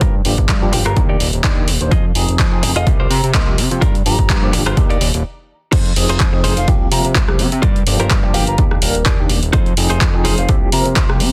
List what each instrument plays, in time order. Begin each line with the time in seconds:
0.01 analog synth bass G2, clean electric guitar F4 G4 A#4, kick, closed hi-hat
0.25 analog synth bass G1, tine electric piano F3 A#3 D4 G4, muted clean electric guitar stroke, open hi-hat
0.38 analog synth bass G1, kick, closed hi-hat
0.49 analog synth bass G2, kick, clap, closed hi-hat
0.62 tine electric piano F3 A#3 D4 G4, muted clean electric guitar stroke
0.72 analog synth bass G1, flute G5, muted clean electric guitar stroke, open hi-hat
0.85 analog synth bass G1, clean electric guitar F4 G4 A#4, flute A#5, cross-stick, closed hi-hat
0.96 analog synth bass D#2, tine electric piano D#3 A#3 D4 G4, kick, closed hi-hat
1.09 clean electric guitar D#4 G4 D5
1.20 analog synth bass D#1, open hi-hat
1.33 analog synth bass D#1, closed hi-hat
1.43 analog synth bass D#2, tine electric piano D#3 A#3 D4 G4, clean electric guitar D#4 G4 D5, kick, clap, closed hi-hat
1.68 analog synth bass D#1, open hi-hat
1.81 analog synth bass D#1, tine electric piano D#3 A#3 D4 C5, closed hi-hat
1.91 analog synth bass F2, clean electric guitar F4 G#4 D#5, kick, closed hi-hat
2.15 analog synth bass F1, tine electric piano F3 C4 D#4 G#4, muted clean electric guitar stroke, open hi-hat
2.29 analog synth bass F1, closed hi-hat
2.39 analog synth bass F2, kick, clap, closed hi-hat
2.52 tine electric piano F3 C4 D#4 G#4, muted clean electric guitar stroke
2.63 analog synth bass F1, muted clean electric guitar stroke, open hi-hat
2.76 analog synth bass F1, clean electric guitar F4 G#4 D#5, flute F5, closed hi-hat
2.86 analog synth bass C2, tine electric piano F3 A#3 C4 G4, kick, closed hi-hat
3.00 clean electric guitar F4 A#4 C5
3.10 analog synth bass C3, flute A#5, open hi-hat
3.24 analog synth bass C3, closed hi-hat
3.34 analog synth bass C2, tine electric piano F3 A#3 C4 G4, clean electric guitar F4 A#4 D#5, flute C6, kick, clap, closed hi-hat
3.58 analog synth bass C3, open hi-hat
3.71 analog synth bass C3, tine electric piano F3 A#3 C4 C5, closed hi-hat
3.81 analog synth bass G2, clean electric guitar F4 G4 A#4, kick, closed hi-hat
3.95 closed hi-hat
4.05 analog synth bass G1, tine electric piano F3 A#3 D4 G4, flute A#5, muted clean electric guitar stroke, open hi-hat
4.19 analog synth bass G1, kick
4.29 analog synth bass G2, kick, clap, closed hi-hat
4.42 tine electric piano F3 A#3 D4 G4, muted clean electric guitar stroke
4.53 analog synth bass G1, muted clean electric guitar stroke, open hi-hat
4.66 analog synth bass G1, clean electric guitar F4 G4 C5, cross-stick, closed hi-hat
4.77 analog synth bass D#2, tine electric piano D#3 A#3 D4 G4, kick, closed hi-hat
4.90 clean electric guitar D#4 G4 D5, closed hi-hat
5.01 analog synth bass D#1, open hi-hat
5.14 analog synth bass D#1, closed hi-hat
5.72 analog synth bass F2, clean electric guitar D#4 F4 G#4 C5, kick, closed hi-hat, crash
5.86 closed hi-hat
5.96 analog synth bass F1, tine electric piano F3 C4 D#4 G#4, open hi-hat
6.09 analog synth bass F1, clean electric guitar D#4 F4 G#4 C5, closed hi-hat
6.20 analog synth bass F2, kick, clap, closed hi-hat
6.33 tine electric piano F3 C4 D#4 G#4, muted clean electric guitar stroke
6.44 analog synth bass F1, clean electric guitar D#4 F4 G#4 C5, open hi-hat
6.57 analog synth bass F1, flute F5, closed hi-hat
6.68 analog synth bass C2, tine electric piano F3 A#3 C4 G4, kick, closed hi-hat
6.91 analog synth bass C3, tine electric piano F3 A#3 C4 A#4, flute A#5, open hi-hat
7.05 analog synth bass C3, closed hi-hat
7.15 analog synth bass C2, clean electric guitar F4 G4 A#4 C5, kick, clap, closed hi-hat
7.28 tine electric piano F3 A#3 C4 G4, cross-stick
7.39 analog synth bass C3, muted clean electric guitar stroke, open hi-hat
7.52 analog synth bass C3, closed hi-hat
7.62 analog synth bass G2, clean electric guitar F4 G4 A#4 D5, kick, closed hi-hat
7.76 closed hi-hat
7.87 analog synth bass G1, tine electric piano F3 A#3 D4 G4, open hi-hat
8.00 analog synth bass G1, clean electric guitar F4 G4 A#4 C5, closed hi-hat
8.11 analog synth bass G2, kick, clap, closed hi-hat
8.23 tine electric piano F3 A#3 D4 G4, muted clean electric guitar stroke
8.34 analog synth bass G1, clean electric guitar F4 G4 A#4 F5, flute G5, open hi-hat
8.47 analog synth bass G1, flute A#5, closed hi-hat
8.58 analog synth bass D#2, tine electric piano D#3 A#3 D4 G4, kick, closed hi-hat
8.71 cross-stick
8.82 analog synth bass D#1, tine electric piano D#3 A#3 D4 A#4, open hi-hat
8.95 analog synth bass D#1, closed hi-hat
9.06 analog synth bass D#2, clean electric guitar D#4 G4 A#4 D5, kick, clap, closed hi-hat
9.19 tine electric piano D#3 A#3 D4 G4
9.29 analog synth bass D#1, muted clean electric guitar stroke, open hi-hat
9.42 analog synth bass D#1, closed hi-hat
9.53 analog synth bass F2, clean electric guitar D#4 F4 G#4 C5, kick, closed hi-hat
9.66 closed hi-hat
9.77 analog synth bass F1, tine electric piano F3 C4 D#4 G#4, open hi-hat
9.90 analog synth bass F1, clean electric guitar D#4 F4 G#4 C5, closed hi-hat
10.01 analog synth bass F2, kick, clap, closed hi-hat
10.14 tine electric piano F3 C4 D#4 G#4, muted clean electric guitar stroke
10.24 analog synth bass F1, clean electric guitar D#4 F4 G#4 C5, open hi-hat
10.38 analog synth bass F1, flute F5, closed hi-hat
10.49 analog synth bass C2, tine electric piano F3 A#3 C4 G4, kick, closed hi-hat
10.72 analog synth bass C3, tine electric piano F3 A#3 C4 A#4, flute A#5, open hi-hat
10.86 analog synth bass C3, closed hi-hat
10.96 analog synth bass C2, clean electric guitar F4 G4 A#4 C5, flute C6, kick, clap, closed hi-hat
11.09 tine electric piano F3 A#3 C4 G4, cross-stick
11.20 analog synth bass C3, muted clean electric guitar stroke, open hi-hat